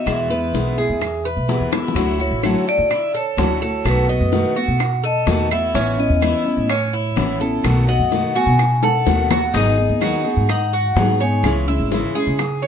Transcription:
Already playing: E5
0.06 E2 B2 E3 G#3 B3 E4 E5, high bongo, claves, maracas
0.30 G#3 B3 E4 B4, maracas
0.53 B1 B2 E3 G#3 B3 E4, high bongo, maracas
0.78 G#3 B3 E4 G#4, high bongo, maracas
0.89 E2
1.01 muted steel-string acoustic guitar stroke, high bongo, claves, maracas
1.25 B4, high bongo, maracas
1.37 B1
1.48 B2 E3 G#3 B3 E4, high bongo, low bongo, maracas
1.60 E2
1.72 G#3 B3 E4, high bongo, claves, maracas
1.88 low bongo
1.95 D2 D3 F#3 A3 E4 F#4, high bongo, maracas
2.19 A3 E4 F#4 C#5, maracas
2.31 A1
2.43 D3 F#3 A3 E4 F#4 A4, high bongo, claves, maracas
2.66 A3 E4 F#4 D5, maracas
2.78 D3
2.90 E4, muted steel-string acoustic guitar stroke, high bongo, claves, maracas
3.14 A4 C#5, maracas
3.37 D2 D3 F#3 A3 E4 F#4, high bongo, low bongo, maracas
3.61 A3 E4 F#4 A4, maracas
3.84 B1 B2 D#3 A3 B3 F#4, high bongo, claves, maracas
3.89 B4
4.09 A3 B3 F#4 D#5, maracas
4.20 F#2
4.32 B2 D#3 A3 B3 F#4, high bongo, maracas
4.56 A3 B3 F#4, high bongo, maracas
4.68 B2
4.80 muted steel-string acoustic guitar stroke, high bongo, claves, maracas
5.04 A4 D#5, high bongo
5.27 E2 B2 D#3 A3 B3 F#4, high bongo, low bongo, maracas
5.51 A3 B3 E4 F#4 E5, high bongo, claves, maracas
5.74 A1 E3 B3 C#4 E4, high bongo, maracas
5.98 B3 C#4 E4 D#5
6.10 E2
6.21 E3 B3 C#4 E4, high bongo, claves, maracas
6.45 B3 C#4 E4, maracas
6.57 A2
6.69 C#4 C#5, muted steel-string acoustic guitar stroke, high bongo, claves, maracas
6.93 E4
7.16 A1 E3 B3 C#4 E4, high bongo, low bongo, maracas
7.40 B3 C#4 E4 A4, maracas
7.64 B1 B2 D#3 A3 B3 F#4, high bongo, claves, maracas
7.88 A3 B3 F#4 D#5 F#5, maracas
7.99 F#2
8.11 B2 D#3 A3 B3 F#4, high bongo, maracas
8.35 A3 B3 F#4 G#5, high bongo, maracas
8.46 B2
8.59 muted steel-string acoustic guitar stroke, high bongo, claves, maracas
8.83 A4 F#5, high bongo
9.06 D#2 B2 D#3 A3 B3 F#4, high bongo, maracas
9.30 A3 B3 F#4, low bongo, claves, maracas
9.53 G#1 D#3 F#3 B3 D#4 G#4 D#5, high bongo, maracas
9.77 B3 D#4 G#4
9.89 D#2
10.01 D#3 F#3 B3 D#4 F#4 G#4, high bongo, claves, maracas
10.24 B3 D#4 G#4, maracas
10.37 G#2
10.49 D#4 F#5, muted steel-string acoustic guitar stroke, high bongo, claves, maracas
10.73 F#4
10.96 G#2 D#3 F#3 B3 D#4 G#4, high bongo, low bongo, maracas
11.20 B3 D#4 G#4 C#5 G#5, maracas
11.43 C#2 C#3 E3 G#3 C#4 E4, high bongo, claves, maracas
11.68 G#3 C#4 E4 E5
11.79 G#1
11.91 C#3 E3 G#3 C#4 E4, high bongo, maracas
12.15 G#3 C#4 E4 G#4, high bongo, maracas
12.27 C#3
12.38 muted steel-string acoustic guitar stroke, high bongo, claves, maracas
12.62 C#5, high bongo

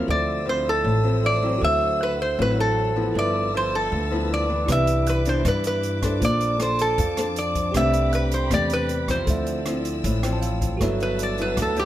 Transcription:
Already playing: F3 C4 E4 A#4
0.07 D2 D3 A4 C5 D5 E5 E6
0.45 F3 C4 E4 C5
0.69 A4
0.84 A1 A2
1.04 F3 C4 E4
1.23 A4 C5 D5 E5
1.42 F#3 C4 E4
1.58 D2 D3 F#4 A4
1.62 C5 E5 F#5
2.03 B4
2.22 C5
2.38 A1 A2 F#3 C4 E4 B4
2.60 A4
2.96 F3 B3 E4
3.14 G1 G2 A4 B4 A5 E6
3.18 D5 E5
3.54 F3 B3 E4 C5
3.75 A4
3.92 D2 D3
4.11 F3 B3 E4
4.34 D5
4.50 E3 B3 D4
4.66 C2 C3 E4 G4 B4 E5 D6, kick, cross-stick, closed hi-hat
4.72 D5 E5
4.87 closed hi-hat
5.06 B4, closed hi-hat
5.25 E3 B3 D4 C5, closed hi-hat
5.45 G2 E3 B3 D4 B4, kick, cross-stick, closed hi-hat
5.64 B4, closed hi-hat
5.83 closed hi-hat
6.02 D4 A4 C5, kick, cross-stick, closed hi-hat
6.19 A#1 A#3 C4 F4 A4 C5 A5, kick, closed hi-hat
6.24 D5
6.41 closed hi-hat
6.60 D4 A4 C5, cross-stick, closed hi-hat
6.79 A4, closed hi-hat
6.98 F2 F3, kick, closed hi-hat
7.17 D4 A4 C5, cross-stick, closed hi-hat
7.36 D5, closed hi-hat
7.55 kick, closed hi-hat
7.72 C2 C3 A3 C4 D4 G4 B4 G5 B5, kick, cross-stick, closed hi-hat
7.77 D5 E5
7.93 closed hi-hat
8.13 B4, closed hi-hat
8.31 C5, closed hi-hat
8.50 E2 C3 A3 D4 G4 D5, kick, cross-stick, closed hi-hat
8.70 B4, closed hi-hat
8.89 closed hi-hat
9.08 F3 C4 E4 C5, kick, cross-stick, closed hi-hat
9.26 D2 D3 A4 C5 D5 E6, kick, closed hi-hat
9.30 E5
9.47 closed hi-hat
9.66 F3 C4 E4, cross-stick, closed hi-hat
9.85 closed hi-hat
10.04 A1 A2, kick, closed hi-hat
10.23 F3 C4 E4 G5, cross-stick, closed hi-hat
10.33 A5
10.42 F5, closed hi-hat
10.61 kick, closed hi-hat
10.77 G1 F#4 A4, kick, cross-stick, closed hi-hat
10.81 G2 F#3 B3 E4 B4 E5 F#5 A5 E6
11.00 B4, closed hi-hat
11.19 closed hi-hat
11.23 D5
11.38 F#3 B3 E4 B4, closed hi-hat
11.57 D2 D3, kick, cross-stick, closed hi-hat
11.62 A4
11.76 F#3 B3 E4 G4, closed hi-hat

